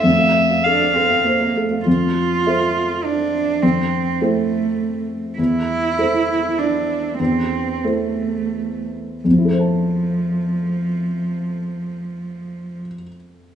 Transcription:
<<
  \new Staff \with { instrumentName = "Violin" } { \time 3/4 \key f \major \tempo 4 = 98 e''4 f''4. r8 | r2. | r2. | r2. |
r2. | r2. | r2. | }
  \new Staff \with { instrumentName = "Felt piano" } { \time 3/4 \key f \major f,16 f''16 e''16 f''16 a'16 f''16 a'16 f''16 c''16 f''16 a'16 f''16 | f,4 <a' c'' e''>2 | f,4 <e' a' c''>2 | e,4 <e' a' c''>2 |
e,4 <e' a' c''>2 | <f, f e' a' c'' a''>2.~ | <f, f e' a' c'' a''>2. | }
  \new Staff \with { instrumentName = "Cello" } { \time 3/4 \key f \major a4 d'8 c'8 bes8 a8 | f'2 d'4 | c'4 a4. r8 | e'2 d'4 |
c'4 a4. r8 | f2.~ | f2. | }
>>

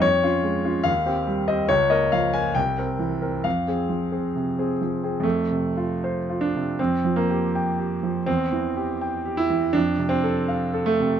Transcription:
\new Staff \with { instrumentName = "Grand piano" } { \time 2/4 \key f \minor \tempo 4 = 77 << { des''4 f''8. ees''16 | des''16 ees''16 f''16 aes''16 g''4 | f''4. r8 | \key f \major a4. d'8 |
c'8 bes4. | c'4. e'8 | d'8 c'4 a8 | } \\ { f,16 <des' f'>16 aes16 <des' f'>16 ees,16 <c' g'>16 g16 <c' g'>16 | des,16 <bes bes'>16 f16 <bes bes'>16 c,16 <c' bes'>16 e16 <c' bes'>16 | f,16 <c' aes'>16 f16 <c' aes'>16 c16 <c' aes'>16 f16 <c' aes'>16 | \tuplet 3/2 { f,8 c8 f'8 c''8 f'8 c8 } |
\tuplet 3/2 { f,8 f8 g'8 g''8 g'8 f8 } | \tuplet 3/2 { e,8 e8 g'8 g''8 g'8 e8 } | \tuplet 3/2 { f,8 c8 a'8 f''8 a'8 c8 } | } >> }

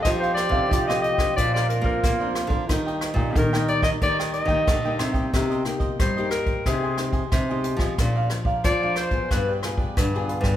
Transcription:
<<
  \new Staff \with { instrumentName = "Clarinet" } { \time 4/4 \key ees \major \tempo 4 = 91 ees''16 c''16 d''8. ees''16 ees''8 d''16 d''16 bes'16 bes'8. r8 | r4 bes'8 d''16 ees''16 d''8 ees''4 r8 | \key c \minor r4 c''8 bes'8 aes'8 r4. | r4 d''8 c''8 b'8 r4. | }
  \new Staff \with { instrumentName = "Cavaquinho" } { \time 4/4 \key ees \major <ees' a' c'' f''>16 <a' c'' f''>16 r16 <a' c'' f''>16 <ees' a' c'' f''>16 <a' c'' f''>8. <d' bes' c'' d''>16 <bes' c'' d''>16 r16 <bes' c'' d''>8 <bes' c'' d''>16 <d' bes' c'' d''>16 <bes' c'' d''>16 | <g' bes' ees'' g''>16 <bes' ees'' g''>16 r16 <bes' ees'' g''>16 <g' bes' ees'' g''>16 <bes' ees'' g''>8. <g' bes' ees'' g''>16 <bes' ees'' g''>16 r16 <bes' ees'' g''>8 <bes' ees'' g''>16 <g' bes' ees'' g''>16 <bes' ees'' g''>16 | \key c \minor <ees' bes' c'' ees''>16 <bes' c'' ees''>16 r16 <bes' c'' ees''>16 <ees' bes' c'' ees''>16 <bes' c'' ees''>8. <g' c'' ees'' aes''>16 <c'' ees'' aes''>16 r16 <c'' ees'' aes''>8 <c'' ees'' aes''>16 <g' c'' ees'' aes''>16 <c'' ees'' aes''>16 | <aes' bes' d'' f''>16 <bes' d'' f''>16 r16 <bes' d'' f''>16 <aes' f''>16 <bes' d'' f''>8. <f' g' b' d''>16 <g' b' d''>16 r16 <g' b' d''>8 <g' b' d''>16 <f' g' b' d''>16 <g' b' d''>16 | }
  \new Staff \with { instrumentName = "Trombone" } { \time 4/4 \key ees \major g'2 f'2 | ees'2.~ ees'8 r8 | \key c \minor r1 | r1 | }
  \new Staff \with { instrumentName = "Nylon-string guitar" } { \time 4/4 \key ees \major << { <c' ees' a'>8 r16 <c' ees' a'>8 <c' ees' a'>8 <f c' d'>4 <f c' d'>8 <f c' d'>8. | <g bes ees'>8. <g bes ees'>8 <g bes ees'>8 <g bes ees'>16 <g bes ees'>8. <g bes ees'>8 <g bes ees'>8. | \key c \minor <bes ees' g'>8 <bes ees' g'>8. <bes ees' g'>8. <aes ees' g'>8 <aes ees' g'>8 r16 <aes ees' g'>8. | <f aes d'>8 <f aes d'>8 r16 <f aes d'>8 <b f' aes'>8. <b f' aes'>8 r16 <b f' aes'>8. | } \\ { f4 c4 bes,4 f4 | ees4 bes,4 ees4 bes,4 | c4 g,4 c4 c4 | bes,4 f,4 g4 d4 | } >> }
  \new Staff \with { instrumentName = "Nylon-string guitar" } { \clef bass \time 4/4 \key ees \major f8. c16 f4 bes,8. bes16 bes8. d16 | ees8. bes,16 ees4 ees8. ees16 d8 c8 | \key c \minor c8 r8 g4 c4 c8. f16 | bes,8 r8 f4 g,4 g,8. g,16 | }
  \new DrumStaff \with { instrumentName = "Drums" } \drummode { \time 4/4 <hh bd ss>16 hh16 <hh ss>16 bd16 <hh bd>16 <hh ss>16 hh16 <hh bd ss>16 <hh bd>16 ss16 hh16 bd16 <hh bd ss>8 <hh ss>16 <hh bd>16 | <hh bd ss>16 hh16 <hh ss>16 bd16 <hh bd>16 ss16 hh16 <hh bd ss>16 <hh bd>16 ss16 hh16 <hh bd>16 <hh bd ss>8 <hh ss>16 <hh bd>16 | <hh bd ss>16 hh16 <hh ss>16 <hh bd>16 <hh bd ss>16 hh16 <hh ss>16 <hh bd>16 <hh bd ss>8 <hh ss>16 <hh bd>16 <hh bd ss>8 hh16 <hh bd ss>16 | <hh bd ss>8 <hh ss>16 bd16 <hh bd ss>8 <hh ss>16 <hh bd>16 <hh bd ss>8 <hh ss>16 bd16 <hh bd ss>16 hh16 hh16 <hh bd ss>16 | }
>>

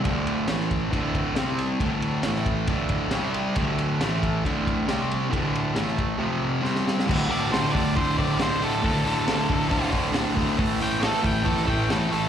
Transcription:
<<
  \new Staff \with { instrumentName = "Lead electric guitar" } { \time 4/4 \key d \minor \tempo 4 = 137 r1 | r1 | r1 | r1 |
\key a \phrygian r8 d''8 c''8 d''8 c''8 d''8 c''8 a'8~ | a'2~ a'8 r4. | r8 g''8 a'8 g''8 a'8 g''8 a'8 a'8 | }
  \new Staff \with { instrumentName = "Distorted electric guitar" } { \clef bass \time 4/4 \key d \minor <d, a, d>4 <a, e a>4 <d, a, d>4 <c g c'>4 | <d, a, d>4 <a, e a>4 <d, a, d>4 <c g c'>4 | <d, a, d>4 <a, e a>4 <d, a, d>4 <c g c'>4 | <d, a, d>4 <a, e a>4 <f, c f>4 <c g c'>4 |
\key a \phrygian <d, a, d>8 <d, a, d>8 <d, a, d>8 <d, a, d>8 <d, a, d>8 <d, a, d>8 <d, a, d>8 <d, a, d>8 | <d, a, d>8 <d, a, d>8 <d, a, d>8 <d, a, d>8 <d, a, d>8 <d, a, d>8 <d, a, d>8 <d, a, d>8 | <a, e a>8 <a, e a>8 <a, e a>8 <a, e a>8 <a, e a>8 <a, e a>8 <a, e a>8 <a, e a>8 | }
  \new DrumStaff \with { instrumentName = "Drums" } \drummode { \time 4/4 <bd cymr>8 cymr8 <cymr sn>16 sn16 <bd cymr>8 <bd cymr>8 <bd cymr>8 <cymr sn>8 <cymr sn>8 | <bd cymr>8 cymr8 <cymr sn>16 sn16 <bd cymr>8 <bd cymr>8 <bd cymr>8 <cymr sn>8 cymr8 | <bd cymr>8 cymr8 <cymr sn>8 <bd cymr>8 <bd cymr>8 <bd cymr>8 <cymr sn>8 cymr8 | <bd cymr>8 cymr8 <cymr sn>16 sn16 <bd cymr>8 r4 sn16 sn16 sn16 sn16 |
<cymc bd>8 hho8 <hho sn>8 <hho bd>8 <hho bd>8 <hho bd>8 <hho sn>8 hho8 | <hho bd>8 hho8 <hho sn>8 <hho bd>8 <hho bd>16 sn16 <hho bd>8 <hho sn>8 <hho bd>8 | <hho bd>8 hho8 <hho sn>8 <hho bd>8 <hho bd>16 sn16 <hho bd>8 <hho sn>8 hho8 | }
>>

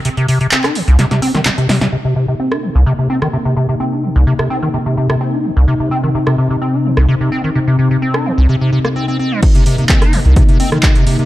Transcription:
<<
  \new Staff \with { instrumentName = "Analog synth pad" } { \time 4/4 \key c \minor \tempo 4 = 128 << { r1 | <c ees'>1~ | <c ees'>1~ | <c ees'>1~ |
<c ees'>1 | <c ees'>1 | } \\ { r1 | bes1~ | bes1 | c'1~ |
c'1 | bes1 | } >> }
  \new Staff \with { instrumentName = "Acid bass" } { \clef bass \time 4/4 \key c \minor c16 c16 c16 c16 c'16 ees'16 d16 c,16 c16 c16 c'16 ees16 c16 c16 c16 c16 | c16 c16 c16 c16 c'16 ees'16 d16 c,16 c16 c16 c'16 ees16 c16 c16 c16 c16 | c'16 ees'16 d16 c,16 c16 c16 c'16 ees16 c16 c16 c16 c16 c'16 ees'16 d16 c,16 | c16 c16 c'16 ees16 c16 c16 c16 c16 c'16 ees'16 d16 c,16 c16 c16 c'16 ees16 |
c16 c16 c16 c16 c'16 ees'16 d16 c,16 c16 c16 c16 bes16 c'16 c'16 c'16 g16 | c16 c16 c16 c16 c'16 ees'16 d16 c,16 c16 c16 c'16 ees16 c16 c16 c16 c16 | }
  \new DrumStaff \with { instrumentName = "Drums" } \drummode { \time 4/4 hh16 hh16 hho16 hh16 <hc hh>16 <hc hh ss>16 hho16 hh16 <hh sn>16 <hh sn>16 hho16 <hh sn>16 <hc hh sn>16 hh16 <hho sn>16 <hh sn>16 | r4 r16 ss8. r8. ss16 r4 | r4 r16 ss8. r8. ss16 r4 | r4 r16 ss8. r8. ss16 r4 |
r4 r16 ss8. r8. ss16 r4 | <cymc hh bd>16 hh16 hho16 hh16 <hc hh bd>16 <hh ss>16 hho16 hh16 <hh bd>16 hh16 hho16 <hh ss>16 <hc hh bd>16 hh16 hho16 hh16 | }
>>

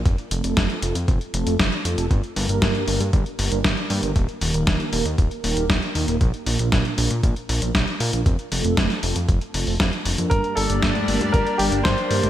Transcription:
<<
  \new Staff \with { instrumentName = "Grand piano" } { \time 4/4 \key g \minor \tempo 4 = 117 r1 | r1 | r1 | r1 |
r1 | bes'8 a'4. bes'8 g'8 c''4 | }
  \new Staff \with { instrumentName = "Analog polysynth" } { \time 4/4 \key g \minor r8 <a c' f' a'>4 <a c' f' a'>16 r8. <a c' f' a'>8 r8 <a c' f' a'>8 | r8 <g, bes d' g' bes'>4 <g, bes d' g' bes'>16 r8. <g, bes d' g' bes'>8 r8 <ees bes d' g' bes'>8 | r8 <ees bes ees' g' bes'>4 <ees bes ees' g' bes'>16 r8. <ees bes ees' g' bes'>8 r8 <bes, bes ees' g' bes'>8 | r8 <bes, bes d' f' bes'>4 <bes, bes d' f' bes'>16 r8. <bes, bes d' f' bes'>8 r8 <bes d' f' bes'>8 |
r8 <a c' f' a'>4 <a c' f' a'>16 r8. <a c' f' a'>8 r8 <g, bes d' g' bes'>8~ | <g, bes d' g' bes'>8 <g, bes d' g' d''>4 <g, bes d' g' bes'>16 r8. <g, bes d' g' bes'>8 r8 <ees bes d' g' bes'>8 | }
  \new Staff \with { instrumentName = "Analog synth pad" } { \time 4/4 \key g \minor r1 | r1 | r1 | r1 |
r1 | <g bes d'>1 | }
  \new Staff \with { instrumentName = "Analog synth bass" } { \clef bass \time 4/4 \key g \minor f,,16 r16 f,,16 f,,16 f,,16 r16 f,,16 f,16 f,,16 r16 f,,16 f,,16 f,,16 r16 f,16 f,,16 | g,,16 r16 g,,16 g,,16 g,,16 r16 g,,16 g,16 g,,16 r16 g,,16 g,,16 g,,16 r16 g,16 g,,16 | ees,,16 r16 ees,,16 ees,,16 ees,,16 r16 ees,,16 ees,16 ees,,16 r16 ees,,16 ees,,16 ees,,16 r16 ees,16 ees,,16 | bes,,16 r16 bes,,16 bes,,16 bes,,16 r16 bes,,16 bes,16 bes,,16 r16 bes,,16 bes,,16 bes,,16 r16 bes,16 bes,,16 |
f,,16 r16 f,,16 f,,16 f,,16 r16 f,,16 f,16 f,,16 r16 f,,16 f,,16 f,16 r16 f,,16 f,16 | g,,16 r16 g,,16 g,,16 g,,16 r16 g,,16 g,16 g,,16 r16 g,,16 g,,16 g,,16 r16 g,16 g,,16 | }
  \new DrumStaff \with { instrumentName = "Drums" } \drummode { \time 4/4 <hh bd>16 hh16 hh16 hh16 <hh bd sn>16 hh16 hh16 hh16 <hh bd>16 hh16 hh16 hh16 <hh bd sn>16 hh16 hh16 hh16 | <hh bd>16 hh16 hho16 hh16 <hh bd sn>16 hh16 hho16 hh16 <hh bd>16 hh16 hho16 hh16 <hh bd sn>16 hh16 hho16 hh16 | <hh bd>16 hh16 hho16 hh16 <hh bd sn>16 hh16 hho16 hh16 <hh bd>16 hh16 hho16 hh16 <hh bd sn>16 hh16 hho16 hh16 | <hh bd>16 hh16 hho16 hh16 <hh bd sn>16 hh16 hho16 hh16 <hh bd>16 hh16 hho16 hh16 <hh bd sn>16 hh16 hho16 hh16 |
<hh bd>16 hh16 hho16 hh16 <hh bd sn>16 <hh sn>16 hho16 hh16 <hh bd>16 hh16 hho16 hho16 <hh bd sn>16 hh16 hho16 hh16 | <hh bd>16 hh16 hho16 hh16 <hh bd sn>16 <cgho hh>16 hho16 <cgho hh>16 <hh bd>16 hh16 hho16 hh16 <hh bd sn>16 hh16 hho16 <cgho hh>16 | }
>>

